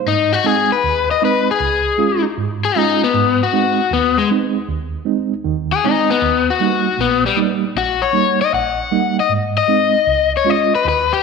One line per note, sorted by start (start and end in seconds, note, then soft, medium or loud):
0.06 0.39 G#2 medium
0.06 0.33 D#4 loud
0.33 0.46 F#4 medium
0.44 0.71 G#3 medium
0.44 0.71 C4 soft
0.44 0.72 D#4 medium
0.44 0.70 G#4 medium
0.72 1.08 B4 medium
0.84 1.17 D#2 medium
1.11 1.22 D#5 medium
1.22 1.48 G#3 medium
1.22 1.48 C4 medium
1.22 1.48 D#4 medium
1.22 1.48 B4 medium
1.51 2.24 G#4 medium
1.60 1.93 C#2 medium
1.98 2.25 G#3 medium
1.98 2.25 C#4 medium
1.98 2.25 F4 medium
2.38 2.71 G#2 medium
2.65 2.77 G#4 loud
2.76 3.02 G#3 medium
2.76 3.02 C#4 soft
2.76 3.01 D#4 medium
2.76 3.03 F4 medium
3.04 3.40 B3 medium
3.14 3.47 G#2 medium
3.43 3.91 F#4 medium
3.53 3.79 G#3 medium
3.53 3.80 C4 soft
3.53 3.80 D#4 medium
3.91 4.24 D#2 medium
3.91 4.17 B3 medium
4.17 4.29 G#3 medium
4.31 4.57 G#3 medium
4.31 4.57 C4 medium
4.31 4.57 D#4 medium
4.68 5.01 D#2 medium
5.05 5.33 G#3 medium
5.05 5.33 C4 medium
5.05 5.33 D#4 medium
5.44 5.78 D#2 medium
5.44 5.78 D#3 medium
5.72 5.84 G#4 loud
5.84 6.11 G#3 medium
5.84 6.11 C4 soft
5.84 6.09 D#4 medium
5.84 6.11 D#4 medium
6.10 6.47 B3 medium
6.22 6.55 D#2 medium
6.50 6.99 F#4 medium
6.60 6.87 G3 medium
6.60 6.87 A#3 soft
6.60 6.88 D#4 medium
6.98 7.32 A#1 medium
6.98 7.32 A#2 medium
6.98 7.24 B3 medium
7.26 7.38 G3 loud
7.37 7.64 G3 medium
7.37 7.64 A#3 soft
7.37 7.64 D#4 medium
7.76 8.09 A#1 medium
7.76 8.02 F#4 medium
8.02 8.39 C#5 medium
8.13 8.40 G3 medium
8.13 8.41 A#3 medium
8.13 8.41 D#4 medium
8.41 8.53 D#5 loud
8.53 8.86 A#1 medium
8.53 9.16 F#5 medium
8.91 9.18 G3 medium
8.91 9.19 A#3 medium
8.91 9.19 D#4 medium
9.20 9.31 D#5 medium
9.29 9.63 G#2 medium
9.58 10.32 D#5 loud
9.68 9.95 G#3 medium
9.68 9.95 C4 medium
9.68 9.96 D#4 medium
10.07 10.41 C#2 medium
10.37 10.50 C#5 loud
10.45 10.72 G#3 medium
10.45 10.73 C#4 medium
10.45 10.73 F4 medium
10.50 10.73 D#5 medium
10.75 10.86 B4 medium
10.85 11.18 D#2 medium
10.85 11.11 B4 medium
11.13 11.23 G4 loud